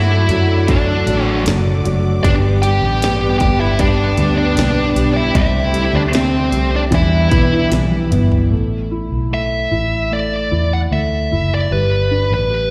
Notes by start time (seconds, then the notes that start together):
Already playing: G2 D3 F#3 A3 D4 E4 F#4 A4 D5 E5 F#5 D6
0.29 F#2 F#3, closed hi-hat
0.68 F#3 D4 D5, kick, closed hi-hat
1.06 A1 F#3 A3 D4 F#4, closed hi-hat
1.23 C5
1.45 F#1 F#3 A3 D4 F#4, snare, closed hi-hat
1.84 F#1 F#3 A3 D4 F#4, closed hi-hat
2.23 G1 G2 D3 G3 B3 D4 G4 B4 D5 G5, kick, closed hi-hat
2.62 G3 G4 G5, closed hi-hat
2.82 A1
3.01 G3 B3 D4 G4, snare, closed hi-hat
3.40 G1 G3 G4 G5, kick, closed hi-hat
3.60 E4 E5
3.79 G3 D4 D5, kick, closed hi-hat
4.17 D2 G3 B3 D4 G4, closed hi-hat
4.38 D4 D5
4.56 B1 G3 B3 D4 G4, snare, closed hi-hat
4.96 B1 G3 B3 D4 G4, closed hi-hat
5.16 E4 E5
5.34 C2 D2 C3 G3 A3 C4 D4 E4 G4 C5 E5, kick, closed hi-hat
5.73 G3, closed hi-hat
5.93 D2 D4 D5
6.12 C3 G3 C4 D4 G4, snare, closed hi-hat
6.16 C5
6.52 C2 G3, closed hi-hat
6.76 D4 D5
6.91 E2 B2 D3 E3 G3 D4 E4 B4 E5, kick, closed hi-hat
6.95 E5
7.31 B1 E3 G3 B3 D4 E4, kick, closed hi-hat
7.70 B1 E3 G3 D4 E4, snare, closed hi-hat
7.92 high tom
8.10 G1 E3 G3 B3 D4 E4, closed hi-hat, mid tom
8.32 floor tom
8.51 A1 A3
8.91 E4
9.12 B1
9.31 A3 E5
9.71 A1 E4
10.11 A3 D5
10.51 E2 E4
10.73 F#5
10.91 D2 A3 E5
11.31 F#1 E4
11.54 D5
11.71 G1 G3 B4
12.11 D4
12.30 A1 B4
12.50 G4